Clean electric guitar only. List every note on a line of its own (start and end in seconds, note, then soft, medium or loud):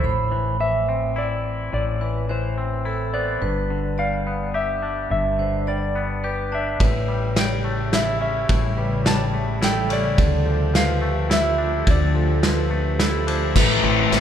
0.04 1.45 A2 medium
0.32 0.59 E3 soft
0.60 2.00 E3 soft
0.89 2.29 C4 soft
1.16 2.57 E4 medium
1.73 3.14 A2 medium
2.01 2.28 E3 soft
2.29 3.42 E3 soft
2.58 3.42 C4 soft
2.85 3.42 E4 medium
3.14 4.27 B3 medium
3.42 4.83 G2 medium
3.70 5.11 D3 soft
3.99 5.67 G3 medium
4.27 5.68 B3 soft
4.54 6.24 G4 medium
4.82 6.24 D4 medium
5.10 6.52 G2 medium
5.39 6.80 D3 medium
5.68 6.83 G3 soft
5.95 6.80 B3 soft
6.24 6.83 G4 medium
6.52 6.80 D4 medium
6.80 8.21 A2 medium
7.08 7.35 G3 soft
7.36 8.77 G3 soft
7.64 9.08 A3 soft
7.93 9.61 E4 medium
8.21 9.62 C#4 medium
8.49 9.90 A2 medium
8.78 9.04 G3 medium
9.05 10.18 G3 medium
9.34 11.01 A3 medium
9.62 10.21 E4 medium
9.90 10.18 C#4 medium
10.18 11.59 D3 medium
10.45 10.73 F3 medium
10.74 12.13 F3 medium
11.01 12.43 A3 medium
11.30 12.71 E4 medium
11.58 12.99 D4 medium
11.87 13.28 D3 medium
12.15 12.42 F3 medium
12.43 13.56 F3 medium
12.71 13.55 A3 medium
12.99 13.56 E4 medium
13.27 13.56 D4 medium
13.55 14.20 A2 medium
13.83 14.20 C4 medium
14.12 14.20 E4 medium